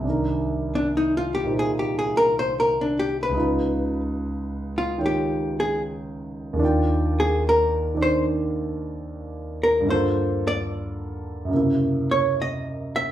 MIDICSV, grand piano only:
0, 0, Header, 1, 2, 480
1, 0, Start_track
1, 0, Key_signature, -3, "minor"
1, 0, Tempo, 819672
1, 29, Time_signature, 4, 2, 24, 8
1, 7681, End_track
2, 0, Start_track
2, 0, Title_t, "Grand piano"
2, 0, Program_c, 0, 0
2, 0, Control_c, 0, 64, 127
2, 0, Note_on_c, 0, 36, 37
2, 12, Note_on_c, 0, 48, 31
2, 24, Note_on_c, 0, 62, 35
2, 35, Control_c, 0, 64, 0
2, 43, Note_on_c, 0, 51, 34
2, 57, Note_on_c, 0, 70, 40
2, 129, Control_c, 0, 64, 127
2, 844, Note_on_c, 0, 46, 35
2, 849, Note_on_c, 0, 63, 33
2, 857, Note_on_c, 0, 65, 31
2, 861, Note_on_c, 0, 72, 38
2, 1927, Note_on_c, 0, 37, 45
2, 1944, Note_off_c, 0, 36, 0
2, 1945, Note_on_c, 0, 49, 41
2, 1950, Note_off_c, 0, 63, 0
2, 1953, Note_off_c, 0, 48, 0
2, 1958, Note_off_c, 0, 46, 0
2, 1959, Note_off_c, 0, 62, 0
2, 1959, Note_on_c, 0, 63, 42
2, 1965, Note_off_c, 0, 65, 0
2, 1967, Note_off_c, 0, 72, 0
2, 1968, Control_c, 0, 64, 0
2, 1969, Note_off_c, 0, 51, 0
2, 1975, Note_off_c, 0, 70, 0
2, 1976, Note_on_c, 0, 65, 42
2, 1992, Note_on_c, 0, 71, 52
2, 2087, Control_c, 0, 64, 127
2, 2908, Note_off_c, 0, 65, 0
2, 2916, Note_on_c, 0, 51, 36
2, 2917, Note_on_c, 0, 65, 32
2, 2922, Note_on_c, 0, 79, 35
2, 2932, Note_on_c, 0, 73, 41
2, 3825, Note_on_c, 0, 39, 50
2, 3836, Note_off_c, 0, 51, 0
2, 3845, Note_on_c, 0, 51, 45
2, 3851, Note_off_c, 0, 37, 0
2, 3860, Note_off_c, 0, 49, 0
2, 3861, Note_on_c, 0, 62, 48
2, 3867, Note_off_c, 0, 63, 0
2, 3868, Note_off_c, 0, 65, 0
2, 3872, Note_off_c, 0, 79, 0
2, 3877, Note_off_c, 0, 73, 0
2, 3877, Control_c, 0, 64, 0
2, 3877, Note_on_c, 0, 65, 46
2, 3884, Note_off_c, 0, 71, 0
2, 3892, Note_on_c, 0, 79, 54
2, 3981, Control_c, 0, 64, 127
2, 4644, Note_off_c, 0, 51, 0
2, 4653, Note_on_c, 0, 51, 39
2, 4659, Note_off_c, 0, 62, 0
2, 4659, Note_on_c, 0, 60, 37
2, 4668, Note_on_c, 0, 62, 42
2, 5741, Note_on_c, 0, 43, 44
2, 5756, Note_off_c, 0, 39, 0
2, 5760, Note_on_c, 0, 50, 44
2, 5774, Note_off_c, 0, 51, 0
2, 5776, Note_off_c, 0, 60, 0
2, 5778, Note_on_c, 0, 58, 43
2, 5781, Note_off_c, 0, 62, 0
2, 5782, Note_off_c, 0, 65, 0
2, 5784, Control_c, 0, 64, 0
2, 5789, Note_off_c, 0, 79, 0
2, 5792, Note_on_c, 0, 65, 46
2, 5809, Note_on_c, 0, 69, 52
2, 5874, Control_c, 0, 64, 127
2, 6704, Note_on_c, 0, 42, 41
2, 6721, Note_off_c, 0, 43, 0
2, 6725, Note_on_c, 0, 49, 39
2, 6730, Note_off_c, 0, 50, 0
2, 6731, Note_off_c, 0, 58, 0
2, 6740, Note_on_c, 0, 58, 37
2, 6746, Note_off_c, 0, 65, 0
2, 6747, Control_c, 0, 64, 0
2, 6754, Note_on_c, 0, 48, 36
2, 6755, Note_off_c, 0, 69, 0
2, 6772, Note_on_c, 0, 64, 45
2, 6839, Control_c, 0, 64, 127
2, 7681, Note_off_c, 0, 42, 0
2, 7681, Note_off_c, 0, 48, 0
2, 7681, Note_off_c, 0, 49, 0
2, 7681, Note_off_c, 0, 58, 0
2, 7681, Note_off_c, 0, 64, 0
2, 7681, End_track
0, 0, End_of_file